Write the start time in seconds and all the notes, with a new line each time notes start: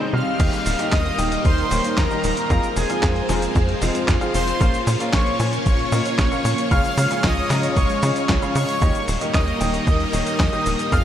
Already playing: G3 C4 D#4 C5
0.00 C3 G3 C4 D#4 C5
0.13 C3 G3 C4 D#4 F5 F6
0.39 D#2 D#3 G3 A#3 D#4 G4 A#4 D#5, kick, closed hi-hat, crash, cabasa
0.53 closed hi-hat, cabasa
0.66 D#1, open hi-hat, cabasa
0.79 D#3 A#3 D#4 G4 D#5, closed hi-hat, cabasa
0.92 D#2 D#5 D#6, kick, snare, clap, closed hi-hat, cabasa
1.06 closed hi-hat
1.19 D#1 D#3 A#3 D#4 G4 G5, open hi-hat, cabasa
1.32 closed hi-hat, cabasa
1.45 D#2 C5 C6, kick, closed hi-hat, cabasa
1.58 closed hi-hat
1.71 D#1 D#3 A#3 D#4 G4 C#5, open hi-hat, cabasa
1.84 closed hi-hat, cabasa
1.98 D#2 A#4 A#5, kick, snare, clap, closed hi-hat, cabasa
2.11 D#3 A#3 D#4 G4 D#5, closed hi-hat, cabasa
2.24 D#1 A#4 A#5, open hi-hat, cabasa
2.37 closed hi-hat, cabasa
2.50 F2 F3 G#3 C4 F4 G#4 A#4 C5 F5 A#5, kick, closed hi-hat, cabasa
2.63 closed hi-hat, cabasa
2.77 F1 G#4 G#5, open hi-hat, cabasa
2.90 F3 C4 F4 G#4 F5, closed hi-hat, cabasa
3.03 F2, kick, snare, clap, closed hi-hat, cabasa
3.16 closed hi-hat
3.29 F1 F3 C4 F4 G#4 G#5, snare, open hi-hat, cabasa
3.42 closed hi-hat, cabasa
3.55 F2, kick, closed hi-hat, cabasa
3.69 closed hi-hat
3.82 F1 F3 C4 F4 G#4 D#5, open hi-hat, cabasa
3.95 closed hi-hat, cabasa
4.08 F2, kick, snare, clap, closed hi-hat, cabasa
4.21 F3 C4 F4 G#4 F5, closed hi-hat, cabasa
4.34 F1 C5 C6, open hi-hat, cabasa
4.48 closed hi-hat, cabasa
4.61 A#1 A#2 A#3 C#4 F4 A#4 C#5 F5, kick, closed hi-hat, cabasa
4.74 closed hi-hat, cabasa
4.87 A#2, open hi-hat, cabasa
5.00 A#2 C#4 F4 A#4 F5, closed hi-hat, cabasa
5.13 A#1 C#5 C#6, kick, snare, clap, closed hi-hat, cabasa
5.27 closed hi-hat
5.40 A#2 C#4 F4 A#4 G#5, open hi-hat, cabasa
5.53 closed hi-hat, cabasa
5.66 A#1 C#5 C#6, kick, closed hi-hat, cabasa
5.79 closed hi-hat
5.92 A#2 C#4 F4 A#4 D#5, open hi-hat, cabasa
6.05 closed hi-hat, cabasa
6.19 A#1, kick, snare, clap, closed hi-hat, cabasa
6.32 A#2 C#4 F4 A#4 F5, closed hi-hat, cabasa
6.45 A#2, open hi-hat, cabasa
6.58 closed hi-hat, cabasa
6.71 C#2 C#3 G#3 C#4 F4 G#4 F5 F6, kick, closed hi-hat, cabasa
6.84 closed hi-hat, cabasa
6.97 C#3, open hi-hat, cabasa
7.11 C#3 C#4 F4 G#4 F5, closed hi-hat, cabasa
7.24 C#2 D#5 D#6, kick, snare, clap, closed hi-hat, cabasa
7.37 closed hi-hat
7.50 C#3 C#4 F4 G#4 A#5, snare, clap, open hi-hat, cabasa
7.63 closed hi-hat, cabasa
7.76 C#2 C#5 C#6, kick, closed hi-hat, cabasa
7.90 closed hi-hat, cabasa
8.03 C#3 C#4 F4 G#4 D#5, open hi-hat, cabasa
8.16 closed hi-hat, cabasa
8.29 C#2, kick, snare, clap, closed hi-hat, cabasa
8.42 C#3 C#4 F4 G#4 F5, closed hi-hat, cabasa
8.55 C#3 C#5 C#6, open hi-hat, cabasa
8.69 closed hi-hat, cabasa
8.82 D#2 D#3 G3 A#3 D#4 G4 A#4 D#5, kick, closed hi-hat, cabasa
8.95 closed hi-hat, cabasa
9.08 D#1, open hi-hat, cabasa
9.21 D#3 A#3 D#4 G4 D#5, closed hi-hat, cabasa
9.34 D#2 D#5 D#6, kick, snare, clap, closed hi-hat, cabasa
9.48 closed hi-hat
9.61 D#1 D#3 A#3 D#4 G4 G5, open hi-hat, cabasa
9.74 closed hi-hat, cabasa
9.87 D#2 D#5 D#6, kick, closed hi-hat, cabasa
10.00 closed hi-hat
10.13 D#1 D#3 A#3 D#4 G4 C#5, open hi-hat, cabasa
10.27 closed hi-hat, cabasa
10.40 D#2, kick, snare, clap, closed hi-hat, cabasa
10.53 D#3 A#3 D#4 G4 D#5, closed hi-hat, cabasa
10.66 D#1, open hi-hat, cabasa
10.79 closed hi-hat, cabasa
10.92 F2 F3 G#3 C4 F4 G#4 C5 F5 F6, kick, closed hi-hat, cabasa